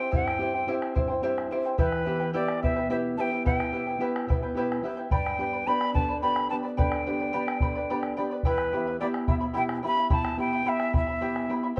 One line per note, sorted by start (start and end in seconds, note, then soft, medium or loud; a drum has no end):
0.00 0.29 C4 soft
0.00 0.11 E4 soft
0.00 0.29 E4 soft
0.00 0.30 G4 soft
0.00 0.11 C5 soft
0.00 0.11 G5 medium
0.00 0.14 G5 medium
0.00 bombo rim soft
0.11 0.67 G2 medium
0.11 0.40 E4 medium
0.11 0.40 G4 medium
0.11 0.40 C5 medium
0.11 0.40 E5 medium
0.11 0.40 G5 medium
0.11 bombo low medium
0.16 0.27 F#5 medium
0.27 0.73 G5 medium
0.27 bombo rim soft
0.38 0.66 C4 soft
0.38 0.66 E4 soft
0.38 0.54 E4 medium
0.38 0.67 G4 soft
0.38 0.53 C5 soft
0.38 0.55 E5 medium
0.38 0.52 G5 medium
0.38 bombo rim soft
0.53 0.67 E4 soft
0.53 0.67 C5 soft
0.53 0.67 G5 soft
0.67 1.12 C4 soft
0.67 1.12 E4 soft
0.67 0.94 E4 medium
0.67 0.96 G4 medium
0.67 1.12 G4 soft
0.67 0.94 C5 medium
0.67 0.94 E5 medium
0.67 0.95 G5 medium
0.82 bombo rim soft
0.95 1.50 G2 medium
0.95 1.09 E4 medium
0.95 1.08 C5 medium
0.95 1.09 E5 medium
0.95 1.07 G5 medium
0.95 bombo low medium
1.08 1.23 E4 soft
1.08 1.22 C5 soft
1.08 1.22 G5 soft
1.22 1.50 C4 soft
1.22 1.50 E4 soft
1.22 1.50 E4 medium
1.22 1.51 G4 medium
1.22 1.51 G4 soft
1.22 1.51 C5 medium
1.22 1.50 E5 medium
1.22 1.51 G5 medium
1.38 bombo rim soft
1.51 1.74 C4 soft
1.51 1.65 E4 medium
1.51 1.74 E4 soft
1.51 1.74 G4 soft
1.51 1.64 C5 medium
1.51 1.65 E5 medium
1.51 1.64 G5 medium
1.65 1.77 E4 soft
1.65 1.78 C5 soft
1.65 1.78 G5 soft
1.65 bombo rim soft
1.78 2.33 E3 medium
1.78 2.04 E4 medium
1.78 2.06 G4 medium
1.78 2.04 B4 medium
1.78 2.31 B4 medium
1.78 2.03 E5 medium
1.78 2.05 G5 medium
1.78 bombo low medium
1.92 bombo rim soft
2.05 2.33 B3 soft
2.05 2.20 E4 medium
2.05 2.34 E4 soft
2.05 2.34 G4 soft
2.05 2.19 B4 medium
2.05 2.20 E5 soft
2.05 2.18 G5 soft
2.05 bombo rim soft
2.20 2.33 E4 soft
2.20 2.33 B4 soft
2.20 2.33 G5 soft
2.33 2.79 B3 soft
2.33 2.62 E4 medium
2.33 2.79 E4 soft
2.33 2.62 G4 medium
2.33 2.79 G4 soft
2.33 2.62 B4 medium
2.33 2.60 D5 medium
2.33 2.61 E5 medium
2.33 2.62 G5 medium
2.48 bombo rim soft
2.62 3.16 B2 medium
2.62 2.76 E4 soft
2.62 2.75 B4 medium
2.62 2.76 E5 soft
2.62 2.88 E5 medium
2.62 2.75 G5 medium
2.62 bombo low medium
2.76 2.89 E4 soft
2.76 2.89 B4 soft
2.76 2.89 G5 soft
2.90 3.16 B3 soft
2.90 3.18 E4 medium
2.90 3.17 E4 soft
2.90 3.18 G4 medium
2.90 3.17 G4 soft
2.90 3.18 B4 medium
2.90 3.17 E5 medium
2.90 2.97 E5 medium
2.90 3.18 G5 medium
3.17 3.62 B3 soft
3.17 3.62 E4 soft
3.17 3.31 E4 medium
3.17 3.63 G4 soft
3.17 3.31 B4 medium
3.17 3.32 E5 medium
3.17 3.30 G5 medium
3.17 3.43 G5 medium
3.17 3.22 A5 medium
3.31 3.45 E4 soft
3.31 3.45 B4 soft
3.31 3.45 G5 soft
3.31 bombo rim soft
3.45 3.99 B2 medium
3.45 3.72 E4 medium
3.45 3.73 G4 medium
3.45 3.72 B4 medium
3.45 3.72 E5 medium
3.45 3.57 F#5 medium
3.45 3.73 G5 medium
3.45 bombo low medium
3.57 4.04 G5 medium
3.57 bombo rim soft
3.72 3.98 B3 soft
3.72 3.98 E4 soft
3.72 3.87 E4 soft
3.72 3.99 G4 soft
3.72 3.87 B4 medium
3.72 3.87 E5 soft
3.72 3.86 G5 medium
3.87 4.00 E4 soft
3.87 4.00 B4 soft
3.87 4.00 G5 soft
3.99 4.44 B3 soft
3.99 4.44 E4 soft
3.99 4.28 E4 medium
3.99 4.45 G4 soft
3.99 4.29 G4 medium
3.99 4.29 B4 medium
3.99 4.27 E5 medium
3.99 4.29 G5 medium
4.16 bombo rim soft
4.27 4.82 B2 soft
4.27 4.42 E4 medium
4.27 4.42 B4 medium
4.27 4.42 E5 medium
4.27 4.41 G5 medium
4.27 bombo rim soft
4.27 bombo low medium
4.43 4.56 E4 soft
4.43 4.56 B4 soft
4.43 4.56 G5 soft
4.55 4.81 B3 soft
4.55 4.82 E4 soft
4.55 4.83 E4 medium
4.55 4.82 G4 soft
4.55 4.84 G4 medium
4.55 4.84 B4 medium
4.55 4.82 E5 medium
4.55 4.84 G5 medium
4.72 bombo rim soft
4.83 5.05 B3 soft
4.83 5.06 E4 soft
4.83 4.98 E4 medium
4.83 5.06 G4 soft
4.83 4.97 B4 medium
4.83 4.98 E5 medium
4.83 4.96 G5 medium
4.97 5.11 E4 soft
4.97 5.10 B4 soft
4.97 5.10 G5 soft
4.97 bombo rim soft
5.10 5.65 G2 medium
5.10 5.39 G4 medium
5.10 5.40 B4 medium
5.10 5.39 D5 medium
5.10 5.39 G5 medium
5.10 5.69 G5 medium
5.10 5.40 B5 medium
5.10 bombo low medium
5.26 bombo rim soft
5.39 5.66 B3 soft
5.39 5.66 D4 soft
5.39 5.66 G4 soft
5.39 5.54 B4 medium
5.39 5.53 D5 soft
5.39 5.54 G5 soft
5.39 5.52 B5 medium
5.39 bombo rim soft
5.53 5.67 B4 soft
5.53 5.67 D5 soft
5.53 5.67 B5 soft
5.67 6.12 B3 soft
5.67 6.12 D4 soft
5.67 5.95 G4 medium
5.67 6.12 G4 soft
5.67 5.94 B4 medium
5.67 5.94 D5 medium
5.67 5.93 G5 medium
5.67 5.93 B5 medium
5.67 5.95 B5 medium
5.81 bombo rim soft
5.94 6.48 D3 medium
5.94 6.09 B4 soft
5.94 6.08 D5 medium
5.94 6.09 G5 soft
5.94 6.20 A5 medium
5.94 6.07 B5 medium
5.94 bombo low medium
6.09 6.22 B4 soft
6.09 6.22 D5 soft
6.09 6.22 B5 soft
6.21 6.51 B3 soft
6.21 6.50 D4 soft
6.21 6.50 G4 medium
6.21 6.51 G4 soft
6.21 6.49 B4 medium
6.21 6.49 D5 medium
6.21 6.48 G5 medium
6.21 6.48 B5 medium
6.21 6.49 B5 medium
6.36 bombo rim soft
6.49 6.96 B3 soft
6.49 6.96 D4 soft
6.49 6.96 G4 soft
6.49 6.63 B4 soft
6.49 6.63 D5 medium
6.49 6.64 G5 medium
6.49 6.56 A5 medium
6.49 6.62 B5 medium
6.63 6.77 B4 soft
6.63 6.77 D5 soft
6.63 6.77 B5 soft
6.63 bombo rim soft
6.77 7.32 D3 medium
6.77 7.06 G4 medium
6.77 7.05 B4 medium
6.77 7.06 D5 medium
6.77 7.05 G5 medium
6.77 8.13 G5 medium
6.77 7.06 B5 medium
6.77 bombo low medium
6.92 bombo rim soft
7.06 7.33 B3 soft
7.06 7.34 D4 soft
7.06 7.34 G4 soft
7.06 7.20 B4 medium
7.06 7.19 D5 medium
7.06 7.20 G5 medium
7.06 7.19 B5 medium
7.06 bombo rim soft
7.20 7.33 B4 soft
7.20 7.33 D5 soft
7.20 7.33 B5 soft
7.33 7.79 B3 soft
7.33 7.79 D4 soft
7.33 7.61 G4 medium
7.33 7.79 G4 soft
7.33 7.61 B4 medium
7.33 7.61 D5 medium
7.33 7.60 G5 medium
7.33 7.61 B5 medium
7.48 bombo rim soft
7.60 8.16 D3 medium
7.60 7.76 B4 medium
7.60 7.75 D5 medium
7.60 7.75 G5 medium
7.60 7.74 B5 medium
7.60 bombo low medium
7.75 7.89 B4 soft
7.75 7.90 D5 soft
7.75 7.89 B5 medium
7.90 8.18 B3 soft
7.90 8.18 D4 soft
7.90 8.17 G4 medium
7.90 8.18 G4 soft
7.90 8.16 B4 medium
7.90 8.17 D5 medium
7.90 8.16 G5 medium
7.90 8.17 B5 medium
8.03 bombo rim soft
8.17 8.40 B3 soft
8.17 8.40 D4 soft
8.17 8.41 G4 soft
8.17 8.31 B4 medium
8.17 8.31 D5 medium
8.17 8.31 G5 medium
8.17 8.30 B5 medium
8.30 8.45 B4 soft
8.30 8.45 D5 soft
8.30 8.45 B5 soft
8.30 bombo rim soft
8.43 8.99 E2 medium
8.43 8.72 E4 medium
8.43 8.73 G4 medium
8.43 8.97 B4 medium
8.43 8.73 E5 medium
8.43 8.71 G5 medium
8.43 8.73 B5 medium
8.43 bombo low medium
8.58 bombo rim soft
8.72 9.01 B3 soft
8.72 8.87 E4 medium
8.72 9.01 E4 soft
8.72 9.01 G4 soft
8.72 8.87 E5 medium
8.72 8.86 G5 soft
8.72 8.86 B5 medium
8.72 bombo rim soft
8.87 8.99 E4 soft
8.87 9.00 E5 soft
8.87 9.00 B5 soft
9.00 9.46 B3 soft
9.00 9.27 E4 medium
9.00 9.46 E4 soft
9.00 9.28 G4 medium
9.00 9.46 G4 soft
9.00 9.06 D5 medium
9.00 9.27 E5 medium
9.00 9.27 G5 medium
9.00 9.27 B5 medium
9.14 bombo rim soft
9.28 9.82 B2 medium
9.28 9.40 E4 medium
9.28 9.40 E5 medium
9.28 9.35 E5 medium
9.28 9.42 G5 medium
9.28 9.39 B5 medium
9.28 bombo low medium
9.41 9.53 E4 soft
9.41 9.54 E5 soft
9.41 9.53 B5 soft
9.54 9.83 B3 soft
9.54 9.82 E4 medium
9.54 9.84 E4 soft
9.54 9.82 G4 medium
9.54 9.84 G4 soft
9.54 9.82 E5 medium
9.54 9.82 G5 medium
9.54 9.63 G5 medium
9.54 9.83 B5 medium
9.69 bombo rim soft
9.83 10.28 B3 soft
9.83 9.96 E4 medium
9.83 10.29 E4 soft
9.83 10.29 G4 soft
9.83 9.96 E5 medium
9.83 9.97 G5 medium
9.83 9.95 B5 medium
9.83 10.10 B5 medium
9.96 10.09 E4 soft
9.96 10.10 E5 soft
9.96 10.10 B5 soft
9.96 bombo rim soft
10.10 10.65 B2 medium
10.10 10.37 E4 medium
10.10 10.38 G4 medium
10.10 10.38 E5 medium
10.10 10.37 G5 medium
10.10 10.37 A5 medium
10.10 10.39 B5 medium
10.10 bombo rim soft
10.10 bombo low medium
10.25 bombo rim medium
10.37 10.64 B3 soft
10.37 10.65 E4 soft
10.37 10.53 E4 medium
10.37 10.65 G4 soft
10.37 10.52 E5 medium
10.37 10.52 G5 soft
10.37 10.70 G5 medium
10.37 10.52 B5 medium
10.37 bombo rim soft
10.53 10.65 E4 soft
10.53 10.65 E5 soft
10.53 10.65 B5 soft
10.53 bombo rim soft
10.65 11.10 B3 soft
10.65 11.10 E4 soft
10.65 10.93 E4 medium
10.65 10.94 G4 medium
10.65 11.11 G4 soft
10.65 10.93 E5 medium
10.65 10.95 E5 medium
10.65 10.92 G5 medium
10.65 10.93 B5 medium
10.80 bombo rim soft
10.93 11.48 B2 medium
10.93 11.08 E4 medium
10.93 11.07 E5 medium
10.93 11.07 G5 soft
10.93 11.06 B5 medium
10.93 bombo rim soft
10.93 bombo low medium
10.97 11.54 E5 medium
11.07 11.20 E4 soft
11.07 11.21 E5 soft
11.07 11.21 B5 soft
11.21 11.48 B3 soft
11.21 11.49 E4 medium
11.21 11.48 E4 soft
11.21 11.49 G4 medium
11.21 11.49 G4 soft
11.21 11.49 E5 medium
11.21 11.48 G5 medium
11.21 11.50 B5 medium
11.36 bombo rim soft
11.49 11.72 B3 soft
11.49 11.72 E4 soft
11.49 11.63 E4 medium
11.49 11.72 G4 soft
11.49 11.62 E5 medium
11.49 11.64 G5 soft
11.49 11.62 B5 medium
11.49 bombo rim soft
11.63 11.76 E4 soft
11.63 11.76 E5 soft
11.63 11.77 B5 medium
11.76 11.80 G4 medium
11.76 11.80 C5 medium
11.76 11.80 E5 medium